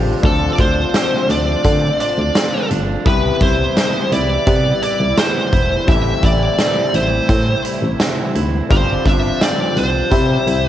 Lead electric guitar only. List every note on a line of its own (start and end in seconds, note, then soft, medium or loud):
0.25 0.51 A4 medium
0.53 0.59 D5 medium
0.61 1.31 C5 medium
1.31 2.00 D5 loud
2.01 2.67 D5 loud
3.07 3.42 B4 medium
3.42 4.13 C5 medium
4.13 4.82 D5 loud
4.83 5.18 D5 medium
5.19 5.89 C5 medium
5.89 6.24 E5 loud
6.25 6.97 D5 loud
6.95 7.61 C5 medium
8.72 9.07 C5 medium
9.07 9.42 E5 loud
9.42 9.78 D5 medium
9.78 10.67 C5 medium
10.67 10.69 B4 medium